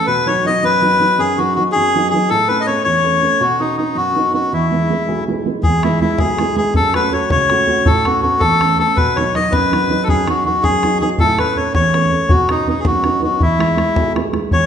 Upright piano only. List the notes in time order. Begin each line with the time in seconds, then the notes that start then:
0.07 B2
0.26 F#3 B3 D#4
0.45 F#3 B3 D#4
0.63 F#2
0.82 F#3 B3 D#4
1.00 F#3 B3 D#4
1.18 F#2
1.38 F#3 B3 D#4
1.57 F#3 B3 D#4
1.76 F#2
1.95 F#3 B3 D#4
2.13 F#3 B3 D#4
2.31 A2
2.49 A3 B3 C#4
2.68 A3 B3 C#4
2.86 E2
3.04 A3 B3 C#4
3.22 A3 B3 C#4
3.40 B2
3.59 B3 C#4 D#4
3.79 B3 C#4 D#4
3.95 F#2
4.15 B3 C#4 D#4
4.33 B3 C#4 D#4
4.53 E2
4.71 G#3 B3 E4
4.90 G#3 B3 E4
5.08 B1
5.28 G#3 B3 E4
5.46 G#3 B3 E4
5.64 E2
5.85 G#3 B3 E4
6.02 G#3 B3 E4
6.20 B1
6.39 G#3 B3 E4
6.56 G#3 B3 E4
6.74 F#2
6.94 A3 C#4 F#4
7.12 A3 C#4 F#4
7.31 C#2
7.50 A3 C#4 F#4
7.67 A3 C#4 F#4
7.86 A2
8.06 A3 B3 C#4
8.23 A3 B3 C#4
8.42 E2
8.61 A3 B3 C#4
8.80 A3 B3 C#4
8.97 B2
9.17 F#3 B3 D#4
9.35 F#3 B3 D#4
9.53 F#2
9.72 F#3 B3 D#4
9.90 F#3 B3 D#4
10.08 F#2
10.27 F#3 B3 D#4
10.45 F#3 B3 D#4
10.64 F#2
10.83 F#3 B3 D#4
11.02 F#3 B3 D#4
11.20 A2
11.38 A3 B3 C#4
11.57 A3 B3 C#4
11.75 E2
11.94 A3 B3 C#4
12.12 A3 B3 C#4
12.31 B2
12.50 B3 C#4 D#4
12.68 B3 C#4 D#4
12.85 F#2
13.04 B3 C#4 D#4
13.22 B3 C#4 D#4
13.40 E2
13.59 G#3 B3 E4
13.77 G#3 B3 E4
13.96 B1
14.15 G#3 B3 E4
14.33 G#3 B3 E4
14.51 E2